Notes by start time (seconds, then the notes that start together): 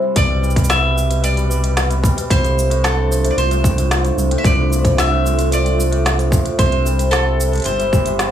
Already playing: C3 G3 E4 C5
0.02 E3 E5
0.15 C2 G4 B4 D5, kick, closed hi-hat, cabasa
0.28 B2 G5
0.42 G3 B4, cabasa
0.50 cabasa
0.56 B2 E5, kick, closed hi-hat, cabasa
0.64 cabasa
0.69 B3 E5 B5, snare, closed hi-hat, cabasa
0.82 B2 B4
0.96 G5, cabasa
1.10 B2 B4, closed hi-hat, cabasa
1.23 G3 D5 E5, closed hi-hat, cabasa
1.36 B2 B5, closed hi-hat, cabasa
1.50 B3 B4, cabasa
1.63 B2 G5, closed hi-hat, cabasa
1.77 B4, snare, closed hi-hat, cabasa
1.90 B2 E5, closed hi-hat, cabasa
2.03 G3 B5, kick, cabasa
2.16 B2 B4, closed hi-hat, cabasa
2.30 C2 F3 D4 F4 C5 G5, kick, closed hi-hat, cabasa
2.43 A2 C5, closed hi-hat, cabasa
2.57 E5, cabasa
2.70 A2 C6, closed hi-hat, cabasa
2.84 D3 A4 C5, snare, closed hi-hat, cabasa
2.97 A2 G5
3.10 F3 C5, cabasa
3.24 A2 E5, closed hi-hat, cabasa
3.31 D5
3.37 C2 C5 C6, closed hi-hat, cabasa
3.51 A2 C5, closed hi-hat, cabasa
3.64 D3 G5, kick, cabasa
3.77 A2 C5, closed hi-hat, cabasa
3.91 F3 E5, snare, closed hi-hat, cabasa
4.04 A2 C6, closed hi-hat, cabasa
4.17 C2 C5, cabasa
4.31 A2 G5, closed hi-hat
4.38 E5
4.44 C2 D3 F4 A4 C5 D5, kick, closed hi-hat, cabasa
4.58 A2 E5
4.70 F3 C6, cabasa
4.84 A2 C5, kick, closed hi-hat, cabasa
4.97 E5 G5, snare, closed hi-hat, cabasa
5.11 A2 C5
5.24 D3 E5, cabasa
5.37 A2 C6, closed hi-hat, cabasa
5.51 F3 C5 D5, closed hi-hat, cabasa
5.64 A2 G5, closed hi-hat, cabasa
5.78 C5, cabasa
5.91 A2 E5, closed hi-hat
6.05 D3 C6, snare, closed hi-hat, cabasa
6.18 A2 C5, closed hi-hat, cabasa
6.31 F3 G5, kick, cabasa
6.45 A2 C5, closed hi-hat, cabasa
6.58 C2 G4 C5 E5, kick, closed hi-hat, cabasa
6.72 C3 C6, closed hi-hat
6.85 G3 C5, cabasa
6.99 C3 G5, closed hi-hat, cabasa
7.11 C4 A4 C5, snare, closed hi-hat, cabasa
7.25 C3 E5
7.40 C6, cabasa
7.53 C3 C5, closed hi-hat, cabasa
7.55 closed hi-hat
7.58 closed hi-hat
7.60 closed hi-hat
7.62 closed hi-hat
7.64 G1 C5 G5, closed hi-hat
7.66 G3, closed hi-hat, cabasa
7.79 C3 C5, closed hi-hat, cabasa
7.93 G3 G4, kick, cabasa
8.06 E3 C6, closed hi-hat, cabasa
8.19 C4 C5, snare, closed hi-hat, cabasa